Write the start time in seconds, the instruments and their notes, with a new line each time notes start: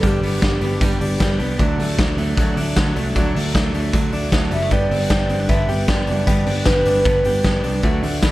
Already playing: clean electric guitar B3
0.01 picked electric bass G1, steel-string acoustic guitar G2 D3 G3 B3 D4 G4, kick, closed hi-hat
0.07 soft synth lead G4
0.21 picked electric bass G1, steel-string acoustic guitar G3 B3 D4 G4, open hi-hat
0.25 soft synth lead G4
0.41 picked electric bass G1, steel-string acoustic guitar G3 B3 D4 G4, kick, snare, closed hi-hat
0.61 picked electric bass G1, steel-string acoustic guitar G3 B3 D4 G4, open hi-hat
0.81 picked electric bass G1, steel-string acoustic guitar G2 D3 G3 B3 D4 G4, kick, closed hi-hat
1.00 picked electric bass G1, steel-string acoustic guitar B3 D4 G4, open hi-hat
1.04 steel-string acoustic guitar G3
1.18 picked electric bass G1, steel-string acoustic guitar G3 B3 D4 G4, kick, snare, closed hi-hat
1.38 picked electric bass C2, steel-string acoustic guitar G3 B3 D4 G4, open hi-hat
1.59 picked electric bass D2, steel-string acoustic guitar D3 F#3 A3 D4, kick, closed hi-hat
1.79 picked electric bass D2, steel-string acoustic guitar F#3 A3 D4, open hi-hat
1.98 picked electric bass D2, steel-string acoustic guitar D3 F#3 A3 D4, kick, snare, closed hi-hat
2.17 picked electric bass D2, steel-string acoustic guitar F#3 A3 D4, open hi-hat
2.37 picked electric bass D2, steel-string acoustic guitar D3 F#3 A3 D4, kick, closed hi-hat
2.55 picked electric bass D2, steel-string acoustic guitar A3 D4, open hi-hat
2.61 steel-string acoustic guitar F#3
2.76 picked electric bass D2, steel-string acoustic guitar D3 F#3 A3 D4, kick, snare, closed hi-hat
2.95 picked electric bass C2, steel-string acoustic guitar A3 D4, open hi-hat
3.00 steel-string acoustic guitar F#3
3.15 picked electric bass D2, steel-string acoustic guitar D3 F#3 A3 D4, kick, closed hi-hat
3.35 picked electric bass D2, steel-string acoustic guitar F#3 A3 D4, open hi-hat
3.54 picked electric bass D2, steel-string acoustic guitar D3 F#3 A3 D4, kick, snare, closed hi-hat
3.73 picked electric bass D2, steel-string acoustic guitar F#3 A3 D4, open hi-hat
3.92 picked electric bass D2, steel-string acoustic guitar D3 F#3 A3 D4, kick, closed hi-hat
4.12 picked electric bass D2, steel-string acoustic guitar A3 D4, open hi-hat
4.17 steel-string acoustic guitar F#3
4.32 picked electric bass D2, steel-string acoustic guitar D3 F#3 A3, kick, snare, closed hi-hat
4.36 steel-string acoustic guitar D4
4.51 picked electric bass F#1, steel-string acoustic guitar F#3 A3 D4, clean electric guitar G3, soft synth lead E5, open hi-hat
4.62 clean electric guitar A3
4.70 picked electric bass G1, steel-string acoustic guitar G2 D3 G3 B3 D4, clean electric guitar G4, soft synth lead D5, kick, closed hi-hat
4.89 picked electric bass G1, steel-string acoustic guitar G3 B3 D4, clean electric guitar C4, open hi-hat
5.01 clean electric guitar D4
5.09 picked electric bass G1, steel-string acoustic guitar D3 G3 B3 D4, clean electric guitar G4, soft synth lead D5, kick, snare, closed hi-hat
5.29 picked electric bass G1, steel-string acoustic guitar B3 D4, clean electric guitar C4, open hi-hat
5.33 steel-string acoustic guitar G3
5.40 clean electric guitar D4
5.49 picked electric bass G1, steel-string acoustic guitar G2 D3 G3 B3 D4, soft synth lead E5, kick, closed hi-hat
5.68 picked electric bass G1, steel-string acoustic guitar G3 B3 D4, clean electric guitar G4, open hi-hat
5.88 picked electric bass G1, steel-string acoustic guitar D3 G3 B3, soft synth lead D5, kick, snare, closed hi-hat
5.92 steel-string acoustic guitar D4
6.07 picked electric bass F#1, steel-string acoustic guitar B3 D4, open hi-hat
6.11 steel-string acoustic guitar G3
6.26 picked electric bass G1, steel-string acoustic guitar G2 D3 G3 B3 D4, clean electric guitar G4, soft synth lead D5, kick, closed hi-hat
6.46 picked electric bass G1, steel-string acoustic guitar G3 B3 D4, clean electric guitar C4, open hi-hat
6.56 clean electric guitar D4
6.65 picked electric bass G1, steel-string acoustic guitar D3 G3 B3, clean electric guitar G4, soft synth lead B4, kick, snare, closed hi-hat
6.69 steel-string acoustic guitar D4
6.85 picked electric bass G1, steel-string acoustic guitar G3 B3 D4, open hi-hat
7.05 picked electric bass G1, steel-string acoustic guitar G2 D3 G3 B3 D4, kick, closed hi-hat
7.25 picked electric bass G1, steel-string acoustic guitar G3 B3 D4, clean electric guitar G4, open hi-hat
7.44 picked electric bass G1, steel-string acoustic guitar D3 G3 B3 D4, kick, snare, closed hi-hat
7.63 picked electric bass C2, steel-string acoustic guitar G3 B3 D4, open hi-hat
7.83 picked electric bass D2, steel-string acoustic guitar D3 F#3 A3 D4, clean electric guitar F#4, kick, closed hi-hat
8.02 picked electric bass D2, steel-string acoustic guitar F#3 A3 D4, open hi-hat
8.22 picked electric bass D2, steel-string acoustic guitar D3 F#3 A3 D4, clean electric guitar E4, kick, snare, closed hi-hat